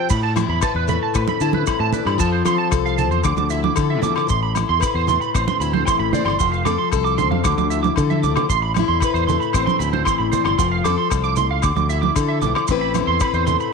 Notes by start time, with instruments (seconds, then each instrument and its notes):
0.09 steel-string acoustic guitar A2, fingered electric bass A2, clean electric guitar B5, kick, crash, maracas
0.23 clean electric guitar A5
0.36 steel-string acoustic guitar E4, cross-stick, closed hi-hat, high conga, low agogo, maracas
0.48 fingered electric bass E2, clean electric guitar B5
0.61 steel-string acoustic guitar B4, clean electric guitar A5, kick, cross-stick, low agogo, maracas
0.75 fingered electric bass E2, clean electric guitar B4
0.88 steel-string acoustic guitar A3, clean electric guitar B5, closed hi-hat, low conga, maracas
1.03 clean electric guitar A5
1.14 fingered electric bass A2, steel-string acoustic guitar C4, clean electric guitar B4, kick, cross-stick, low agogo, maracas
1.27 clean electric guitar B5, high conga, maracas
1.40 fingered electric bass D3, steel-string acoustic guitar E4, clean electric guitar A5, closed hi-hat, maracas
1.53 clean electric guitar B4, high conga
1.66 steel-string acoustic guitar E3, clean electric guitar B5, kick, cross-stick, low agogo, maracas
1.80 fingered electric bass A2, clean electric guitar A5
1.93 clean electric guitar B4, steel-string acoustic guitar D5, closed hi-hat, low conga, maracas
2.05 fingered electric bass G2, clean electric guitar B5, cross-stick, low agogo
2.18 fingered electric bass F2, steel-string acoustic guitar F3 C4 F4 A4, clean electric guitar A5, kick, maracas
2.32 clean electric guitar C5
2.45 fingered electric bass F3, steel-string acoustic guitar A4, clean electric guitar C6, cross-stick, closed hi-hat, high conga, low agogo, maracas
2.58 clean electric guitar A5
2.71 fingered electric bass C2, steel-string acoustic guitar A4, kick, cross-stick, low agogo, maracas
2.86 clean electric guitar F5, maracas
2.98 steel-string acoustic guitar C4, clean electric guitar A5, closed hi-hat, low conga, maracas
3.10 fingered electric bass E2, clean electric guitar C5, maracas
3.23 fingered electric bass D2, steel-string acoustic guitar D3, clean electric guitar D6, kick, cross-stick, low agogo, maracas
3.36 fingered electric bass D2, clean electric guitar D6, high conga, maracas
3.50 steel-string acoustic guitar E4, clean electric guitar E5, closed hi-hat, maracas
3.64 clean electric guitar D6, high conga
3.76 fingered electric bass D3, steel-string acoustic guitar A4, kick, cross-stick, low agogo, maracas
3.90 clean electric guitar E5
4.02 fingered electric bass E2, steel-string acoustic guitar F3, clean electric guitar D6, closed hi-hat, low conga, maracas
4.16 clean electric guitar D6, cross-stick, low agogo
4.27 fingered electric bass A1, steel-string acoustic guitar A2, clean electric guitar C6, kick, maracas
4.43 clean electric guitar B5
4.55 steel-string acoustic guitar E4, cross-stick, closed hi-hat, high conga, low agogo, maracas
4.69 fingered electric bass E2, clean electric guitar C6
4.80 steel-string acoustic guitar B4, clean electric guitar B5, kick, cross-stick, low agogo, maracas
4.94 fingered electric bass E2, clean electric guitar C5
5.07 steel-string acoustic guitar A3, clean electric guitar C6, closed hi-hat, low conga, maracas
5.21 clean electric guitar B5, maracas
5.34 fingered electric bass A1, steel-string acoustic guitar C4, clean electric guitar C5, kick, cross-stick, low agogo, maracas
5.48 clean electric guitar C6, high conga, maracas
5.60 fingered electric bass D2, steel-string acoustic guitar E4, clean electric guitar B5, closed hi-hat, maracas
5.73 clean electric guitar C5, high conga
5.86 steel-string acoustic guitar E3, clean electric guitar C6, kick, cross-stick, low agogo, maracas
5.99 fingered electric bass A1, clean electric guitar B5
6.13 clean electric guitar C5, steel-string acoustic guitar D5, closed hi-hat, low conga, maracas
6.25 fingered electric bass G1, clean electric guitar C6, cross-stick, low agogo
6.39 fingered electric bass F1, steel-string acoustic guitar F3, clean electric guitar C6, kick, maracas
6.52 clean electric guitar F5, maracas
6.65 fingered electric bass F2, steel-string acoustic guitar A4, clean electric guitar D6, cross-stick, closed hi-hat, low conga, low agogo, maracas
6.78 clean electric guitar C6
6.92 fingered electric bass C2, steel-string acoustic guitar A4, kick, cross-stick, low agogo, maracas
7.05 clean electric guitar D6, maracas
7.18 steel-string acoustic guitar C4, clean electric guitar C6, closed hi-hat, low conga, maracas
7.31 fingered electric bass F2, clean electric guitar F5, high conga
7.44 fingered electric bass D2, steel-string acoustic guitar D3, clean electric guitar D6, kick, cross-stick, low agogo, maracas
7.58 fingered electric bass D2, clean electric guitar D6, high conga, maracas
7.70 steel-string acoustic guitar E4, clean electric guitar E5, closed hi-hat, maracas
7.83 clean electric guitar D6, high conga, maracas
7.96 fingered electric bass D3, steel-string acoustic guitar A4, kick, cross-stick, low conga, low agogo, maracas
8.10 clean electric guitar E5, high conga, maracas
8.23 fingered electric bass D2, steel-string acoustic guitar F3, clean electric guitar D6, closed hi-hat, low conga, maracas
8.36 clean electric guitar D6, cross-stick, low conga, low agogo, maracas
8.50 fingered electric bass A1, steel-string acoustic guitar A2, clean electric guitar C6, kick, maracas
8.62 clean electric guitar B5
8.74 cross-stick, closed hi-hat, high conga, low agogo, maracas
8.79 steel-string acoustic guitar E4
8.88 fingered electric bass E2, clean electric guitar C6
9.00 clean electric guitar B5, kick, cross-stick, low agogo, maracas
9.04 steel-string acoustic guitar B4
9.14 fingered electric bass E2, clean electric guitar C5, maracas
9.27 steel-string acoustic guitar A3, clean electric guitar C6, closed hi-hat, low conga, maracas
9.40 clean electric guitar B5, maracas
9.53 fingered electric bass A1, steel-string acoustic guitar C4, clean electric guitar C5, kick, cross-stick, low agogo, maracas
9.66 clean electric guitar C6, high conga, maracas
9.79 fingered electric bass D2, steel-string acoustic guitar E4, clean electric guitar B5, closed hi-hat, maracas
9.93 clean electric guitar C5, high conga
10.05 steel-string acoustic guitar E3, clean electric guitar C6, kick, cross-stick, low agogo, maracas
10.18 fingered electric bass A1, clean electric guitar B5
10.32 clean electric guitar C5, steel-string acoustic guitar D5, closed hi-hat, low conga, maracas
10.45 fingered electric bass G1, clean electric guitar C6, cross-stick, low agogo
10.58 fingered electric bass F1, steel-string acoustic guitar F3, clean electric guitar C6, kick, maracas
10.72 clean electric guitar F5
10.84 fingered electric bass F2, steel-string acoustic guitar A4, clean electric guitar D6, cross-stick, closed hi-hat, high conga, low agogo, maracas
10.98 clean electric guitar C6
11.10 fingered electric bass C2, steel-string acoustic guitar F3, kick, cross-stick, low agogo, maracas
11.24 clean electric guitar D6, maracas
11.36 steel-string acoustic guitar E3, clean electric guitar C6, closed hi-hat, low conga, maracas
11.50 fingered electric bass C#2, clean electric guitar F5
11.62 fingered electric bass D2, steel-string acoustic guitar D3, clean electric guitar D6, kick, cross-stick, low agogo, maracas
11.76 fingered electric bass D2, clean electric guitar D6, high conga, maracas
11.89 steel-string acoustic guitar E4, clean electric guitar E5, closed hi-hat, maracas
12.02 clean electric guitar D6, high conga
12.16 fingered electric bass D3, steel-string acoustic guitar A4, kick, cross-stick, low agogo, maracas
12.28 clean electric guitar E5
12.42 fingered electric bass B1, steel-string acoustic guitar F3, clean electric guitar D6, closed hi-hat, low conga, maracas
12.55 clean electric guitar D6, cross-stick, low agogo
12.67 fingered electric bass A1, steel-string acoustic guitar A2 A3 C4 E4, muted clean electric guitar stroke, kick, maracas
12.72 steel-string acoustic guitar B4
12.81 clean electric guitar B5
12.94 steel-string acoustic guitar E4, cross-stick, closed hi-hat, high conga, low agogo, maracas
13.07 fingered electric bass E2, clean electric guitar C6
13.20 steel-string acoustic guitar B4, clean electric guitar B5, kick, cross-stick, low agogo, maracas
13.33 fingered electric bass E2, clean electric guitar C5, maracas
13.47 steel-string acoustic guitar A3, clean electric guitar C6, closed hi-hat, low conga, maracas
13.60 clean electric guitar B5, maracas